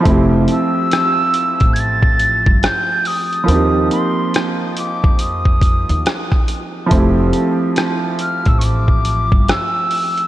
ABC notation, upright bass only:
X:1
M:4/4
L:1/16
Q:"Swing 16ths" 1/4=70
K:F
V:1 name="Upright bass" clef=bass
F,,,2 z4 z A,,,4 G,,, z4 | _E,,2 z4 z F,,4 E,, z4 | F,,,2 z4 z A,,,4 G,,, z4 |]